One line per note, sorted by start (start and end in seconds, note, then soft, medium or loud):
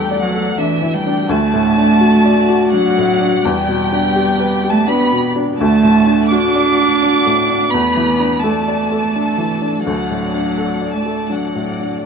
0.00 1.26 E2 medium
0.00 0.82 E3 medium
0.00 0.23 G3 medium
0.00 1.25 A3 medium
0.00 0.58 D4 soft
0.00 0.25 A4 medium
0.00 1.25 A4 medium
0.00 1.25 D5 medium
0.00 0.20 G5 medium
0.11 0.49 D5 medium
0.22 0.56 F#3 medium
0.22 0.57 F#5 medium
0.34 0.72 A4 medium
0.57 0.95 E3 medium
0.57 0.96 D4 medium
0.57 0.93 E5 medium
0.82 1.20 E3 medium
0.94 1.31 G3 medium
0.94 1.30 G5 medium
1.06 1.30 D4 medium
1.29 3.41 D2 medium
1.29 3.41 A3 medium
1.29 2.74 A3 loud
1.29 3.45 F#4 medium
1.29 5.54 D5 medium
1.29 2.74 A5 medium
1.54 1.92 A2 medium
1.78 2.16 D4 medium
2.01 2.40 F#4 medium
2.25 2.64 D5 medium
2.49 2.88 F#4 medium
2.72 3.43 F#3 loud
2.72 3.11 D4 medium
2.72 3.44 F#5 medium
2.98 3.36 A2 medium
3.21 3.45 D4 medium
3.44 5.54 E2 medium
3.44 4.72 G3 loud
3.44 5.59 B3 medium
3.44 5.59 G4 medium
3.44 4.70 G5 medium
3.68 4.06 B2 medium
3.92 4.30 D4 medium
4.16 4.54 G4 medium
4.40 4.78 B4 medium
4.64 5.02 G4 medium
4.70 4.89 A3 medium
4.70 4.88 A5 medium
4.87 5.23 B3 medium
4.87 5.25 D4 medium
4.87 5.23 B5 medium
5.12 5.49 B2 medium
5.36 5.59 D4 medium
5.58 7.69 D2 medium
5.58 6.32 A3 loud
5.58 9.84 A3 medium
5.58 7.72 F#4 medium
5.58 9.81 D5 medium
5.58 6.27 A5 medium
5.83 6.22 A2 medium
6.07 6.45 D4 soft
6.31 7.71 D4 loud
6.31 6.69 F#4 medium
6.31 7.72 D6 medium
6.55 6.92 D5 medium
6.79 7.16 F#4 soft
7.03 7.40 D4 soft
7.26 7.63 A2 medium
7.50 7.73 D4 soft
7.71 9.82 E2 medium
7.71 8.44 B3 loud
7.71 12.04 A4 medium
7.71 8.42 B5 medium
7.97 8.34 E3 soft
8.20 8.57 D4 soft
8.42 9.83 A3 medium
8.42 8.81 A4 medium
8.42 9.85 A5 medium
8.68 9.05 D5 soft
8.92 9.29 A4 soft
9.16 9.52 D4 soft
9.38 9.76 E3 soft
9.62 9.85 D4 soft
9.84 12.00 D2 medium
9.84 10.95 F#3 medium
9.84 11.99 A3 soft
9.84 12.06 D5 soft
9.84 10.91 F#5 medium
10.10 10.48 A2 soft
10.34 10.72 D4 soft
10.58 10.96 A4 soft
10.81 11.20 D5 soft
10.93 11.31 A3 medium
10.93 11.30 A5 medium
11.06 11.44 A4 soft
11.30 12.03 F#3 medium
11.30 11.69 D4 soft
11.30 12.03 F#5 soft
11.55 11.94 A2 soft
11.79 12.03 D4 soft